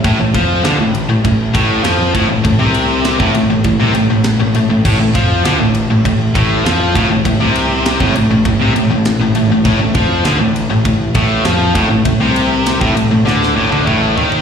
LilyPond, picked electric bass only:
\new Staff \with { instrumentName = "Picked electric bass" } { \clef bass \time 4/4 \key a \minor \tempo 4 = 100 a,,16 a,,16 f,8 d,16 a,,8 a,,16 a,,8 a,,8 f,8 a,,16 a,,16 | a,,16 c,4 a,,16 a,,16 a,,16 a,,16 c,16 a,,16 a,,8 a,,16 a,,16 a,,16 | a,,16 a,,16 f,8 d,16 a,,8 a,,16 a,,8 a,,8 f,8 a,,16 a,,16 | a,,16 c,4 a,,16 a,,16 a,,16 a,,16 c,16 a,,16 a,,8 a,,16 a,,16 a,,16 |
a,,16 a,,16 f,8 d,16 a,,8 a,,16 a,,8 a,,8 f,8 a,,16 a,,16 | a,,16 c,4 a,,16 a,,16 a,,16 d,8 a,,16 d,16 a,,8 dis,8 | }